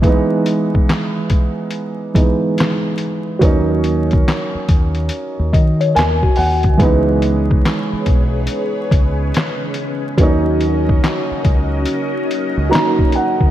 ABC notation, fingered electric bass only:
X:1
M:4/4
L:1/16
Q:"Swing 16ths" 1/4=71
K:D#phr
V:1 name="Fingered electric bass" clef=bass
z16 | D,,4 z2 D,,2 z D,, D,2 D,, z D,, =D,, | C,,4 z2 B,,,2 z2 C,,2 z4 | D,,4 z2 C,,2 z3 C,, z3 =D,, |]